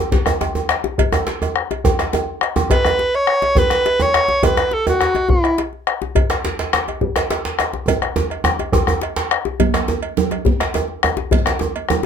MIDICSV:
0, 0, Header, 1, 5, 480
1, 0, Start_track
1, 0, Tempo, 287081
1, 1649, Time_signature, 12, 3, 24, 8
1, 20163, End_track
2, 0, Start_track
2, 0, Title_t, "Alto saxophone"
2, 0, Program_c, 0, 65
2, 4541, Note_on_c, 0, 71, 79
2, 5271, Note_on_c, 0, 73, 86
2, 5296, Note_off_c, 0, 71, 0
2, 5993, Note_on_c, 0, 71, 87
2, 6018, Note_off_c, 0, 73, 0
2, 6724, Note_on_c, 0, 73, 90
2, 6750, Note_off_c, 0, 71, 0
2, 7429, Note_off_c, 0, 73, 0
2, 7443, Note_on_c, 0, 71, 74
2, 7919, Note_on_c, 0, 69, 83
2, 7944, Note_off_c, 0, 71, 0
2, 8146, Note_off_c, 0, 69, 0
2, 8162, Note_on_c, 0, 66, 75
2, 8866, Note_on_c, 0, 64, 77
2, 8891, Note_off_c, 0, 66, 0
2, 9400, Note_off_c, 0, 64, 0
2, 20163, End_track
3, 0, Start_track
3, 0, Title_t, "Bombo"
3, 195, Note_on_c, 9, 43, 82
3, 363, Note_off_c, 9, 43, 0
3, 430, Note_on_c, 9, 37, 73
3, 598, Note_off_c, 9, 37, 0
3, 680, Note_on_c, 9, 37, 28
3, 847, Note_off_c, 9, 37, 0
3, 1155, Note_on_c, 9, 37, 86
3, 1322, Note_off_c, 9, 37, 0
3, 1401, Note_on_c, 9, 37, 26
3, 1568, Note_off_c, 9, 37, 0
3, 1641, Note_on_c, 9, 43, 81
3, 1808, Note_off_c, 9, 43, 0
3, 1882, Note_on_c, 9, 37, 73
3, 2049, Note_off_c, 9, 37, 0
3, 2120, Note_on_c, 9, 37, 27
3, 2288, Note_off_c, 9, 37, 0
3, 2601, Note_on_c, 9, 37, 76
3, 2769, Note_off_c, 9, 37, 0
3, 3083, Note_on_c, 9, 43, 82
3, 3250, Note_off_c, 9, 43, 0
3, 3327, Note_on_c, 9, 37, 64
3, 3495, Note_off_c, 9, 37, 0
3, 3560, Note_on_c, 9, 37, 31
3, 3728, Note_off_c, 9, 37, 0
3, 4033, Note_on_c, 9, 37, 85
3, 4200, Note_off_c, 9, 37, 0
3, 4512, Note_on_c, 9, 43, 88
3, 4679, Note_off_c, 9, 43, 0
3, 4758, Note_on_c, 9, 37, 76
3, 4925, Note_off_c, 9, 37, 0
3, 5472, Note_on_c, 9, 37, 81
3, 5639, Note_off_c, 9, 37, 0
3, 5713, Note_on_c, 9, 37, 29
3, 5880, Note_off_c, 9, 37, 0
3, 5941, Note_on_c, 9, 43, 84
3, 6108, Note_off_c, 9, 43, 0
3, 6191, Note_on_c, 9, 37, 67
3, 6358, Note_off_c, 9, 37, 0
3, 6926, Note_on_c, 9, 37, 102
3, 7093, Note_off_c, 9, 37, 0
3, 7174, Note_on_c, 9, 37, 31
3, 7342, Note_off_c, 9, 37, 0
3, 7404, Note_on_c, 9, 43, 92
3, 7571, Note_off_c, 9, 43, 0
3, 7649, Note_on_c, 9, 37, 79
3, 7816, Note_off_c, 9, 37, 0
3, 8369, Note_on_c, 9, 37, 77
3, 8537, Note_off_c, 9, 37, 0
3, 8615, Note_on_c, 9, 37, 26
3, 8782, Note_off_c, 9, 37, 0
3, 8853, Note_on_c, 9, 43, 92
3, 9020, Note_off_c, 9, 43, 0
3, 9093, Note_on_c, 9, 37, 66
3, 9260, Note_off_c, 9, 37, 0
3, 9341, Note_on_c, 9, 37, 29
3, 9509, Note_off_c, 9, 37, 0
3, 9815, Note_on_c, 9, 37, 78
3, 9982, Note_off_c, 9, 37, 0
3, 10066, Note_on_c, 9, 37, 26
3, 10233, Note_off_c, 9, 37, 0
3, 10302, Note_on_c, 9, 43, 97
3, 10470, Note_off_c, 9, 43, 0
3, 10538, Note_on_c, 9, 37, 69
3, 10705, Note_off_c, 9, 37, 0
3, 11255, Note_on_c, 9, 37, 88
3, 11423, Note_off_c, 9, 37, 0
3, 11497, Note_on_c, 9, 37, 24
3, 11664, Note_off_c, 9, 37, 0
3, 11725, Note_on_c, 9, 43, 83
3, 11892, Note_off_c, 9, 43, 0
3, 11966, Note_on_c, 9, 37, 70
3, 12133, Note_off_c, 9, 37, 0
3, 12209, Note_on_c, 9, 37, 27
3, 12376, Note_off_c, 9, 37, 0
3, 12684, Note_on_c, 9, 37, 84
3, 12851, Note_off_c, 9, 37, 0
3, 12937, Note_on_c, 9, 37, 30
3, 13104, Note_off_c, 9, 37, 0
3, 13171, Note_on_c, 9, 43, 93
3, 13338, Note_off_c, 9, 43, 0
3, 13410, Note_on_c, 9, 37, 79
3, 13577, Note_off_c, 9, 37, 0
3, 13881, Note_on_c, 9, 37, 31
3, 14049, Note_off_c, 9, 37, 0
3, 14124, Note_on_c, 9, 37, 86
3, 14291, Note_off_c, 9, 37, 0
3, 14359, Note_on_c, 9, 37, 28
3, 14527, Note_off_c, 9, 37, 0
3, 14588, Note_on_c, 9, 37, 28
3, 14588, Note_on_c, 9, 43, 93
3, 14755, Note_off_c, 9, 37, 0
3, 14755, Note_off_c, 9, 43, 0
3, 14833, Note_on_c, 9, 37, 72
3, 15000, Note_off_c, 9, 37, 0
3, 15086, Note_on_c, 9, 37, 32
3, 15253, Note_off_c, 9, 37, 0
3, 15328, Note_on_c, 9, 37, 26
3, 15495, Note_off_c, 9, 37, 0
3, 15570, Note_on_c, 9, 37, 91
3, 15737, Note_off_c, 9, 37, 0
3, 16049, Note_on_c, 9, 43, 82
3, 16216, Note_off_c, 9, 43, 0
3, 16283, Note_on_c, 9, 37, 70
3, 16451, Note_off_c, 9, 37, 0
3, 17241, Note_on_c, 9, 37, 26
3, 17408, Note_off_c, 9, 37, 0
3, 17485, Note_on_c, 9, 43, 84
3, 17652, Note_off_c, 9, 43, 0
3, 17729, Note_on_c, 9, 37, 73
3, 17896, Note_off_c, 9, 37, 0
3, 17972, Note_on_c, 9, 37, 29
3, 18139, Note_off_c, 9, 37, 0
3, 18442, Note_on_c, 9, 37, 101
3, 18609, Note_off_c, 9, 37, 0
3, 18683, Note_on_c, 9, 37, 33
3, 18850, Note_off_c, 9, 37, 0
3, 18924, Note_on_c, 9, 43, 115
3, 19091, Note_off_c, 9, 43, 0
3, 19158, Note_on_c, 9, 37, 93
3, 19325, Note_off_c, 9, 37, 0
3, 19872, Note_on_c, 9, 37, 77
3, 20040, Note_off_c, 9, 37, 0
3, 20163, End_track
4, 0, Start_track
4, 0, Title_t, "Djembe"
4, 205, Note_on_c, 9, 62, 74
4, 210, Note_on_c, 9, 64, 69
4, 372, Note_off_c, 9, 62, 0
4, 377, Note_off_c, 9, 64, 0
4, 443, Note_on_c, 9, 63, 94
4, 610, Note_off_c, 9, 63, 0
4, 686, Note_on_c, 9, 62, 68
4, 686, Note_on_c, 9, 63, 65
4, 853, Note_off_c, 9, 62, 0
4, 854, Note_off_c, 9, 63, 0
4, 923, Note_on_c, 9, 63, 74
4, 927, Note_on_c, 9, 62, 26
4, 1090, Note_off_c, 9, 63, 0
4, 1094, Note_off_c, 9, 62, 0
4, 1157, Note_on_c, 9, 62, 68
4, 1324, Note_off_c, 9, 62, 0
4, 1406, Note_on_c, 9, 62, 58
4, 1406, Note_on_c, 9, 63, 54
4, 1573, Note_off_c, 9, 62, 0
4, 1573, Note_off_c, 9, 63, 0
4, 1652, Note_on_c, 9, 64, 77
4, 1819, Note_off_c, 9, 64, 0
4, 1880, Note_on_c, 9, 63, 90
4, 2047, Note_off_c, 9, 63, 0
4, 2118, Note_on_c, 9, 62, 76
4, 2135, Note_off_c, 9, 62, 0
4, 2135, Note_on_c, 9, 62, 56
4, 2303, Note_off_c, 9, 62, 0
4, 2370, Note_on_c, 9, 63, 69
4, 2537, Note_off_c, 9, 63, 0
4, 2626, Note_on_c, 9, 62, 20
4, 2793, Note_off_c, 9, 62, 0
4, 2856, Note_on_c, 9, 62, 51
4, 2856, Note_on_c, 9, 63, 55
4, 3023, Note_off_c, 9, 62, 0
4, 3023, Note_off_c, 9, 63, 0
4, 3088, Note_on_c, 9, 63, 102
4, 3101, Note_on_c, 9, 64, 55
4, 3256, Note_off_c, 9, 63, 0
4, 3269, Note_off_c, 9, 64, 0
4, 3334, Note_on_c, 9, 62, 75
4, 3501, Note_off_c, 9, 62, 0
4, 3565, Note_on_c, 9, 62, 70
4, 3571, Note_on_c, 9, 63, 72
4, 3732, Note_off_c, 9, 62, 0
4, 3738, Note_off_c, 9, 63, 0
4, 4046, Note_on_c, 9, 62, 23
4, 4213, Note_off_c, 9, 62, 0
4, 4279, Note_on_c, 9, 62, 46
4, 4279, Note_on_c, 9, 63, 50
4, 4285, Note_off_c, 9, 63, 0
4, 4285, Note_on_c, 9, 63, 97
4, 4447, Note_off_c, 9, 62, 0
4, 4453, Note_off_c, 9, 63, 0
4, 4524, Note_on_c, 9, 64, 62
4, 4525, Note_on_c, 9, 62, 63
4, 4691, Note_off_c, 9, 64, 0
4, 4692, Note_off_c, 9, 62, 0
4, 4771, Note_on_c, 9, 63, 67
4, 4938, Note_off_c, 9, 63, 0
4, 5001, Note_on_c, 9, 62, 49
4, 5169, Note_off_c, 9, 62, 0
4, 5489, Note_on_c, 9, 62, 20
4, 5656, Note_off_c, 9, 62, 0
4, 5722, Note_on_c, 9, 62, 50
4, 5722, Note_on_c, 9, 63, 49
4, 5890, Note_off_c, 9, 62, 0
4, 5890, Note_off_c, 9, 63, 0
4, 5960, Note_on_c, 9, 64, 60
4, 5963, Note_on_c, 9, 63, 98
4, 6127, Note_off_c, 9, 64, 0
4, 6130, Note_off_c, 9, 63, 0
4, 6201, Note_on_c, 9, 62, 72
4, 6369, Note_off_c, 9, 62, 0
4, 6450, Note_on_c, 9, 62, 65
4, 6617, Note_off_c, 9, 62, 0
4, 6682, Note_on_c, 9, 63, 90
4, 6850, Note_off_c, 9, 63, 0
4, 6933, Note_on_c, 9, 62, 64
4, 7101, Note_off_c, 9, 62, 0
4, 7164, Note_on_c, 9, 62, 46
4, 7164, Note_on_c, 9, 63, 56
4, 7331, Note_off_c, 9, 62, 0
4, 7331, Note_off_c, 9, 63, 0
4, 7403, Note_on_c, 9, 64, 61
4, 7413, Note_on_c, 9, 63, 96
4, 7570, Note_off_c, 9, 64, 0
4, 7580, Note_off_c, 9, 63, 0
4, 7644, Note_on_c, 9, 62, 72
4, 7650, Note_off_c, 9, 62, 0
4, 7650, Note_on_c, 9, 62, 19
4, 7818, Note_off_c, 9, 62, 0
4, 7879, Note_on_c, 9, 62, 53
4, 8046, Note_off_c, 9, 62, 0
4, 8138, Note_on_c, 9, 63, 86
4, 8305, Note_off_c, 9, 63, 0
4, 8373, Note_on_c, 9, 62, 21
4, 8383, Note_off_c, 9, 62, 0
4, 8383, Note_on_c, 9, 62, 72
4, 8550, Note_off_c, 9, 62, 0
4, 8606, Note_on_c, 9, 62, 57
4, 8606, Note_on_c, 9, 63, 52
4, 8773, Note_off_c, 9, 62, 0
4, 8773, Note_off_c, 9, 63, 0
4, 8839, Note_on_c, 9, 64, 62
4, 9006, Note_off_c, 9, 64, 0
4, 9333, Note_on_c, 9, 62, 70
4, 9500, Note_off_c, 9, 62, 0
4, 9578, Note_on_c, 9, 62, 24
4, 9745, Note_off_c, 9, 62, 0
4, 10059, Note_on_c, 9, 62, 57
4, 10059, Note_on_c, 9, 63, 55
4, 10226, Note_off_c, 9, 62, 0
4, 10226, Note_off_c, 9, 63, 0
4, 10290, Note_on_c, 9, 64, 73
4, 10457, Note_off_c, 9, 64, 0
4, 10530, Note_on_c, 9, 62, 72
4, 10545, Note_off_c, 9, 62, 0
4, 10545, Note_on_c, 9, 62, 23
4, 10713, Note_off_c, 9, 62, 0
4, 10778, Note_on_c, 9, 62, 76
4, 10790, Note_off_c, 9, 62, 0
4, 10790, Note_on_c, 9, 62, 55
4, 10957, Note_off_c, 9, 62, 0
4, 11022, Note_on_c, 9, 62, 74
4, 11189, Note_off_c, 9, 62, 0
4, 11258, Note_on_c, 9, 62, 22
4, 11262, Note_off_c, 9, 62, 0
4, 11262, Note_on_c, 9, 62, 77
4, 11429, Note_off_c, 9, 62, 0
4, 11503, Note_on_c, 9, 63, 60
4, 11670, Note_off_c, 9, 63, 0
4, 11726, Note_on_c, 9, 64, 67
4, 11893, Note_off_c, 9, 64, 0
4, 11974, Note_on_c, 9, 62, 79
4, 12141, Note_off_c, 9, 62, 0
4, 12213, Note_on_c, 9, 62, 68
4, 12215, Note_off_c, 9, 62, 0
4, 12215, Note_on_c, 9, 62, 67
4, 12382, Note_off_c, 9, 62, 0
4, 12458, Note_on_c, 9, 62, 72
4, 12625, Note_off_c, 9, 62, 0
4, 12699, Note_on_c, 9, 62, 59
4, 12866, Note_off_c, 9, 62, 0
4, 12932, Note_on_c, 9, 62, 50
4, 12932, Note_on_c, 9, 63, 54
4, 13100, Note_off_c, 9, 62, 0
4, 13100, Note_off_c, 9, 63, 0
4, 13176, Note_on_c, 9, 62, 19
4, 13176, Note_on_c, 9, 64, 65
4, 13177, Note_on_c, 9, 63, 81
4, 13343, Note_off_c, 9, 62, 0
4, 13343, Note_off_c, 9, 64, 0
4, 13344, Note_off_c, 9, 63, 0
4, 13407, Note_on_c, 9, 62, 21
4, 13574, Note_off_c, 9, 62, 0
4, 13643, Note_on_c, 9, 63, 102
4, 13648, Note_on_c, 9, 62, 51
4, 13810, Note_off_c, 9, 63, 0
4, 13815, Note_off_c, 9, 62, 0
4, 13885, Note_on_c, 9, 62, 17
4, 14052, Note_off_c, 9, 62, 0
4, 14113, Note_on_c, 9, 63, 101
4, 14128, Note_on_c, 9, 62, 18
4, 14280, Note_off_c, 9, 63, 0
4, 14295, Note_off_c, 9, 62, 0
4, 14368, Note_on_c, 9, 62, 50
4, 14368, Note_on_c, 9, 63, 48
4, 14536, Note_off_c, 9, 62, 0
4, 14536, Note_off_c, 9, 63, 0
4, 14598, Note_on_c, 9, 63, 102
4, 14610, Note_on_c, 9, 64, 59
4, 14766, Note_off_c, 9, 63, 0
4, 14777, Note_off_c, 9, 64, 0
4, 14845, Note_on_c, 9, 63, 92
4, 15013, Note_off_c, 9, 63, 0
4, 15072, Note_on_c, 9, 62, 67
4, 15240, Note_off_c, 9, 62, 0
4, 15321, Note_on_c, 9, 62, 24
4, 15323, Note_off_c, 9, 62, 0
4, 15323, Note_on_c, 9, 62, 86
4, 15490, Note_off_c, 9, 62, 0
4, 15564, Note_on_c, 9, 62, 25
4, 15731, Note_off_c, 9, 62, 0
4, 15804, Note_on_c, 9, 62, 51
4, 15804, Note_on_c, 9, 63, 55
4, 15971, Note_off_c, 9, 62, 0
4, 15971, Note_off_c, 9, 63, 0
4, 16045, Note_on_c, 9, 64, 76
4, 16212, Note_off_c, 9, 64, 0
4, 16285, Note_on_c, 9, 62, 23
4, 16287, Note_off_c, 9, 62, 0
4, 16287, Note_on_c, 9, 62, 84
4, 16454, Note_off_c, 9, 62, 0
4, 16522, Note_on_c, 9, 62, 64
4, 16527, Note_on_c, 9, 63, 80
4, 16689, Note_off_c, 9, 62, 0
4, 16694, Note_off_c, 9, 63, 0
4, 17000, Note_on_c, 9, 62, 25
4, 17019, Note_on_c, 9, 63, 79
4, 17167, Note_off_c, 9, 62, 0
4, 17186, Note_off_c, 9, 63, 0
4, 17240, Note_on_c, 9, 62, 61
4, 17408, Note_off_c, 9, 62, 0
4, 17472, Note_on_c, 9, 64, 73
4, 17639, Note_off_c, 9, 64, 0
4, 17738, Note_on_c, 9, 62, 77
4, 17905, Note_off_c, 9, 62, 0
4, 17960, Note_on_c, 9, 62, 75
4, 17980, Note_on_c, 9, 63, 75
4, 18127, Note_off_c, 9, 62, 0
4, 18147, Note_off_c, 9, 63, 0
4, 18195, Note_on_c, 9, 62, 26
4, 18362, Note_off_c, 9, 62, 0
4, 18463, Note_on_c, 9, 63, 80
4, 18630, Note_off_c, 9, 63, 0
4, 18674, Note_on_c, 9, 62, 64
4, 18674, Note_on_c, 9, 63, 62
4, 18841, Note_off_c, 9, 62, 0
4, 18841, Note_off_c, 9, 63, 0
4, 18914, Note_on_c, 9, 64, 85
4, 19081, Note_off_c, 9, 64, 0
4, 19152, Note_on_c, 9, 62, 26
4, 19174, Note_off_c, 9, 62, 0
4, 19174, Note_on_c, 9, 62, 78
4, 19341, Note_off_c, 9, 62, 0
4, 19384, Note_on_c, 9, 62, 67
4, 19412, Note_on_c, 9, 63, 79
4, 19551, Note_off_c, 9, 62, 0
4, 19580, Note_off_c, 9, 63, 0
4, 19868, Note_on_c, 9, 62, 25
4, 19900, Note_on_c, 9, 63, 80
4, 20035, Note_off_c, 9, 62, 0
4, 20067, Note_off_c, 9, 63, 0
4, 20163, End_track
5, 0, Start_track
5, 0, Title_t, "Drums"
5, 444, Note_on_c, 9, 56, 47
5, 611, Note_off_c, 9, 56, 0
5, 689, Note_on_c, 9, 56, 44
5, 856, Note_off_c, 9, 56, 0
5, 1179, Note_on_c, 9, 56, 44
5, 1346, Note_off_c, 9, 56, 0
5, 1657, Note_on_c, 9, 56, 65
5, 1824, Note_off_c, 9, 56, 0
5, 1903, Note_on_c, 9, 56, 47
5, 2070, Note_off_c, 9, 56, 0
5, 2383, Note_on_c, 9, 56, 40
5, 2550, Note_off_c, 9, 56, 0
5, 2863, Note_on_c, 9, 56, 38
5, 3031, Note_off_c, 9, 56, 0
5, 3343, Note_on_c, 9, 56, 44
5, 3510, Note_off_c, 9, 56, 0
5, 3588, Note_on_c, 9, 56, 45
5, 3755, Note_off_c, 9, 56, 0
5, 4065, Note_on_c, 9, 56, 41
5, 4233, Note_off_c, 9, 56, 0
5, 4534, Note_on_c, 9, 56, 58
5, 4702, Note_off_c, 9, 56, 0
5, 4784, Note_on_c, 9, 56, 46
5, 4952, Note_off_c, 9, 56, 0
5, 5257, Note_on_c, 9, 56, 36
5, 5425, Note_off_c, 9, 56, 0
5, 5735, Note_on_c, 9, 56, 35
5, 5902, Note_off_c, 9, 56, 0
5, 6456, Note_on_c, 9, 56, 39
5, 6623, Note_off_c, 9, 56, 0
5, 6936, Note_on_c, 9, 56, 37
5, 7103, Note_off_c, 9, 56, 0
5, 7413, Note_on_c, 9, 56, 56
5, 7580, Note_off_c, 9, 56, 0
5, 7652, Note_on_c, 9, 56, 40
5, 7819, Note_off_c, 9, 56, 0
5, 8140, Note_on_c, 9, 56, 41
5, 8308, Note_off_c, 9, 56, 0
5, 8624, Note_on_c, 9, 56, 37
5, 8791, Note_off_c, 9, 56, 0
5, 9109, Note_on_c, 9, 56, 43
5, 9276, Note_off_c, 9, 56, 0
5, 9342, Note_on_c, 9, 56, 39
5, 9509, Note_off_c, 9, 56, 0
5, 9822, Note_on_c, 9, 56, 39
5, 9989, Note_off_c, 9, 56, 0
5, 10296, Note_on_c, 9, 56, 59
5, 10463, Note_off_c, 9, 56, 0
5, 10542, Note_on_c, 9, 56, 45
5, 10709, Note_off_c, 9, 56, 0
5, 11025, Note_on_c, 9, 56, 46
5, 11192, Note_off_c, 9, 56, 0
5, 11513, Note_on_c, 9, 56, 38
5, 11680, Note_off_c, 9, 56, 0
5, 11992, Note_on_c, 9, 56, 47
5, 12159, Note_off_c, 9, 56, 0
5, 12233, Note_on_c, 9, 56, 43
5, 12400, Note_off_c, 9, 56, 0
5, 12709, Note_on_c, 9, 56, 46
5, 12876, Note_off_c, 9, 56, 0
5, 13182, Note_on_c, 9, 56, 56
5, 13350, Note_off_c, 9, 56, 0
5, 13418, Note_on_c, 9, 56, 45
5, 13585, Note_off_c, 9, 56, 0
5, 13899, Note_on_c, 9, 56, 43
5, 14066, Note_off_c, 9, 56, 0
5, 14374, Note_on_c, 9, 56, 40
5, 14541, Note_off_c, 9, 56, 0
5, 15101, Note_on_c, 9, 56, 44
5, 15268, Note_off_c, 9, 56, 0
5, 15582, Note_on_c, 9, 56, 41
5, 15749, Note_off_c, 9, 56, 0
5, 16048, Note_on_c, 9, 63, 69
5, 16048, Note_on_c, 9, 64, 69
5, 16049, Note_on_c, 9, 56, 62
5, 16216, Note_off_c, 9, 56, 0
5, 16216, Note_off_c, 9, 63, 0
5, 16216, Note_off_c, 9, 64, 0
5, 16289, Note_on_c, 9, 56, 55
5, 16456, Note_off_c, 9, 56, 0
5, 16762, Note_on_c, 9, 56, 48
5, 16781, Note_on_c, 9, 63, 23
5, 16930, Note_off_c, 9, 56, 0
5, 16948, Note_off_c, 9, 63, 0
5, 17007, Note_on_c, 9, 64, 76
5, 17174, Note_off_c, 9, 64, 0
5, 17253, Note_on_c, 9, 56, 43
5, 17420, Note_off_c, 9, 56, 0
5, 17494, Note_on_c, 9, 63, 72
5, 17662, Note_off_c, 9, 63, 0
5, 17733, Note_on_c, 9, 56, 53
5, 17900, Note_off_c, 9, 56, 0
5, 17971, Note_on_c, 9, 56, 47
5, 17986, Note_on_c, 9, 63, 24
5, 18139, Note_off_c, 9, 56, 0
5, 18153, Note_off_c, 9, 63, 0
5, 18453, Note_on_c, 9, 56, 45
5, 18620, Note_off_c, 9, 56, 0
5, 18935, Note_on_c, 9, 56, 64
5, 18940, Note_on_c, 9, 63, 75
5, 18940, Note_on_c, 9, 64, 62
5, 19103, Note_off_c, 9, 56, 0
5, 19107, Note_off_c, 9, 63, 0
5, 19107, Note_off_c, 9, 64, 0
5, 19173, Note_on_c, 9, 56, 50
5, 19340, Note_off_c, 9, 56, 0
5, 19658, Note_on_c, 9, 56, 49
5, 19660, Note_on_c, 9, 63, 26
5, 19825, Note_off_c, 9, 56, 0
5, 19827, Note_off_c, 9, 63, 0
5, 19902, Note_on_c, 9, 64, 65
5, 20069, Note_off_c, 9, 64, 0
5, 20163, End_track
0, 0, End_of_file